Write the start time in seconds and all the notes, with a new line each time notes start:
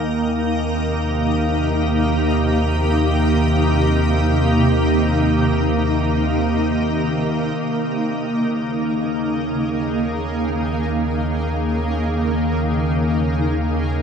Already playing: D#2 C3 D#3 A#3 D#4
0.08 G4
7.55 D#2 C#3 D#3 A#3
8.58 G#4